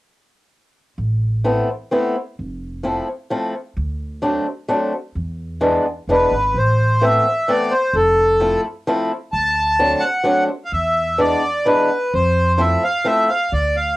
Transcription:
0.98 1.59 A1 medium
1.44 1.68 A3 medium
1.44 1.68 B3 soft
1.44 1.68 C4 soft
1.44 1.68 E4 medium
1.91 2.15 A3 medium
1.91 2.15 B3 soft
1.91 2.15 C4 soft
1.91 2.15 E4 medium
2.39 2.98 F1 medium
2.83 3.07 F3 soft
2.83 3.07 A3 soft
2.83 3.07 C4 soft
2.83 3.07 E4 medium
3.30 3.53 F3 soft
3.30 3.53 A3 soft
3.30 3.53 C4 medium
3.30 3.54 E4 medium
3.77 4.37 D2 medium
4.22 4.46 F#3 medium
4.22 4.46 A3 soft
4.22 4.45 C4 soft
4.22 4.45 D4 medium
4.68 4.92 F#3 medium
4.68 4.92 A3 medium
4.68 4.92 C4 medium
4.68 4.92 D4 medium
5.15 5.76 E2 medium
5.61 5.85 E3 medium
5.61 5.85 G#3 medium
5.61 5.85 B3 medium
5.61 5.85 D4 medium
6.07 6.29 E1 medium
6.07 6.33 E3 soft
6.07 6.33 G#3 soft
6.07 6.33 B3 soft
6.07 6.33 D4 medium
6.07 6.59 B4 medium
6.31 6.53 G#1 medium
6.54 7.15 A1 medium
6.54 7.05 C5 medium
7.01 7.25 E3 medium
7.01 7.25 A3 soft
7.01 7.26 B3 soft
7.01 7.26 C4 medium
7.01 7.51 E5 medium
7.48 7.72 E3 medium
7.48 7.72 A3 soft
7.48 7.72 B3 medium
7.48 7.72 C4 medium
7.48 7.73 D5 medium
7.71 7.95 C5 medium
7.93 8.54 F1 medium
7.93 8.61 A4 medium
8.40 8.64 F3 medium
8.40 8.64 A3 medium
8.40 8.64 C4 medium
8.40 8.65 E4 medium
8.87 9.11 F3 medium
8.87 9.11 A3 medium
8.87 9.11 C4 medium
8.87 9.11 E4 medium
9.32 9.93 D2 medium
9.32 10.04 A5 medium
9.79 10.02 F#3 medium
9.79 10.03 A3 medium
9.79 10.02 C4 soft
9.79 10.02 D4 medium
10.00 10.44 F#5 medium
10.24 10.48 F#3 medium
10.24 10.48 A3 soft
10.24 10.48 C4 medium
10.24 10.48 D4 medium
10.65 10.72 F5 medium
10.72 11.33 E2 medium
10.72 11.20 E5 medium
11.18 11.42 E3 medium
11.18 11.42 G#3 soft
11.18 11.42 B3 soft
11.18 11.42 D4 medium
11.18 11.68 D5 medium
11.66 11.89 E3 soft
11.66 11.89 G#3 soft
11.66 11.89 B3 soft
11.66 11.89 D4 medium
11.66 12.14 B4 medium
12.14 12.74 F2 medium
12.14 12.62 C5 medium
12.58 12.82 F3 medium
12.58 12.82 A3 soft
12.58 12.82 C4 soft
12.58 12.82 E4 medium
12.58 12.84 E5 medium
12.84 13.07 F5 medium
13.04 13.28 F3 medium
13.04 13.29 A3 medium
13.04 13.28 C4 medium
13.04 13.29 E4 medium
13.04 13.30 E5 medium
13.29 13.53 F5 medium
13.52 13.97 D2 medium
13.52 13.76 D5 medium
13.76 13.97 F5 medium

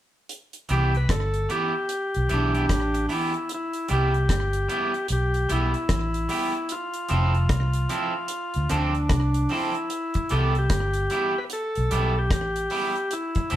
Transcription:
0.29 closed hi-hat medium
0.53 closed hi-hat medium
0.69 1.05 C2 loud
0.69 0.91 E3 medium
0.69 0.92 B3 medium
0.69 0.92 E4 medium
0.69 0.92 G4 medium
0.69 0.96 G4 medium
0.69 closed hi-hat medium
0.95 1.11 B4 medium
0.95 closed hi-hat soft
1.09 1.45 G1 medium
1.09 1.51 A4 loud
1.09 kick loud
1.09 cross-stick loud
1.09 closed hi-hat medium
1.34 closed hi-hat medium
1.49 1.72 E3 medium
1.49 1.72 B3 medium
1.49 1.72 E4 medium
1.49 1.72 G4 medium
1.49 3.06 G4 medium
1.49 closed hi-hat medium
1.89 closed hi-hat medium
2.14 2.29 B1 medium
2.14 closed hi-hat soft
2.29 2.66 B1 medium
2.29 2.52 E3 medium
2.29 2.52 B3 medium
2.29 2.52 E4 medium
2.29 2.52 G4 medium
2.29 closed hi-hat medium
2.33 3.14 D4 loud
2.54 2.65 E3 medium
2.54 2.65 B3 medium
2.54 2.65 E4 medium
2.54 2.65 G4 medium
2.54 closed hi-hat soft
2.69 3.05 A1 medium
2.69 kick loud
2.69 cross-stick loud
2.69 closed hi-hat medium
2.94 muted clean electric guitar stroke medium
2.94 closed hi-hat medium
3.09 3.32 E3 medium
3.09 3.32 B3 medium
3.09 3.32 E4 medium
3.09 3.52 E4 medium
3.09 3.32 G4 medium
3.09 open hi-hat medium
3.34 closed hi-hat soft
3.49 closed hi-hat medium
3.54 3.89 E4 medium
3.73 closed hi-hat medium
3.88 4.26 C2 medium
3.88 4.12 G3 medium
3.88 4.12 B3 medium
3.88 4.12 E4 medium
3.88 4.12 G4 medium
3.88 closed hi-hat medium
3.93 5.07 G4 medium
4.14 closed hi-hat soft
4.29 4.65 G1 medium
4.29 kick loud
4.29 cross-stick loud
4.29 closed hi-hat medium
4.53 closed hi-hat soft
4.68 4.92 G3 medium
4.68 4.92 B3 medium
4.68 4.92 E4 medium
4.68 4.92 G4 medium
4.68 closed hi-hat medium
4.94 closed hi-hat soft
5.08 5.46 B1 loud
5.08 closed hi-hat medium
5.12 5.52 G4 medium
5.34 closed hi-hat medium
5.49 5.73 B1 medium
5.49 5.72 G3 medium
5.49 5.72 B3 medium
5.49 5.72 E4 medium
5.49 6.74 E4 loud
5.49 5.72 G4 medium
5.49 closed hi-hat medium
5.74 closed hi-hat soft
5.89 6.26 A1 medium
5.89 kick loud
5.89 cross-stick loud
5.89 closed hi-hat medium
6.14 closed hi-hat medium
6.29 6.52 G3 medium
6.29 6.52 B3 medium
6.29 6.52 E4 medium
6.29 6.53 G4 medium
6.29 open hi-hat medium
6.54 closed hi-hat soft
6.69 8.77 F4 medium
6.69 closed hi-hat medium
6.94 closed hi-hat medium
7.08 7.46 F1 medium
7.08 7.32 F3 medium
7.08 7.32 C4 medium
7.08 7.32 E4 medium
7.08 7.33 A4 medium
7.08 closed hi-hat medium
7.34 closed hi-hat soft
7.49 7.86 C2 medium
7.49 kick loud
7.49 cross-stick loud
7.49 closed hi-hat medium
7.73 closed hi-hat medium
7.89 8.12 F3 medium
7.89 8.12 C4 medium
7.89 8.13 E4 medium
7.89 8.13 A4 medium
7.89 closed hi-hat medium
8.28 closed hi-hat medium
8.54 8.69 D2 medium
8.54 closed hi-hat soft
8.69 9.06 D2 medium
8.69 8.92 F3 medium
8.69 8.92 C4 medium
8.69 8.93 D4 medium
8.69 9.53 D4 medium
8.69 8.93 A4 medium
8.69 cross-stick medium
8.69 closed hi-hat medium
8.95 closed hi-hat soft
9.09 9.46 C2 medium
9.09 kick loud
9.09 cross-stick loud
9.09 closed hi-hat medium
9.34 closed hi-hat soft
9.49 9.72 F3 medium
9.49 9.73 C4 medium
9.49 9.73 D4 medium
9.49 10.34 E4 medium
9.49 9.73 A4 medium
9.49 open hi-hat medium
9.75 closed hi-hat soft
9.90 closed hi-hat medium
10.14 kick medium
10.14 closed hi-hat medium
10.29 10.67 C2 loud
10.29 10.53 G3 medium
10.29 10.53 B3 medium
10.29 10.53 E4 medium
10.29 10.53 G4 medium
10.29 10.57 A4 medium
10.29 closed hi-hat medium
10.55 11.39 G4 loud
10.55 closed hi-hat soft
10.70 11.06 G1 medium
10.70 kick loud
10.70 cross-stick loud
10.70 closed hi-hat medium
10.93 closed hi-hat soft
11.10 11.33 G3 medium
11.10 11.33 B3 medium
11.10 11.34 E4 medium
11.10 11.34 G4 medium
11.10 closed hi-hat medium
11.38 11.44 B4 medium
11.50 12.19 A4 loud
11.50 closed hi-hat medium
11.75 11.90 B1 medium
11.75 closed hi-hat soft
11.91 12.32 B1 medium
11.91 12.13 G3 medium
11.91 12.14 B3 medium
11.91 12.14 E4 medium
11.91 12.14 G4 medium
11.91 closed hi-hat medium
12.18 12.31 G4 medium
12.31 12.67 A1 medium
12.31 13.14 G4 loud
12.31 kick loud
12.31 cross-stick loud
12.31 closed hi-hat medium
12.56 closed hi-hat medium
12.70 12.93 G3 medium
12.70 12.93 B3 medium
12.70 12.94 E4 medium
12.70 12.94 G4 medium
12.70 open hi-hat medium
12.96 closed hi-hat soft
13.11 13.56 E4 medium
13.11 closed hi-hat medium
13.35 kick medium
13.35 closed hi-hat soft
13.50 13.56 F1 medium
13.50 13.56 F3 medium
13.50 13.56 C4 medium
13.50 13.56 E4 medium
13.50 13.56 A4 medium
13.50 closed hi-hat medium

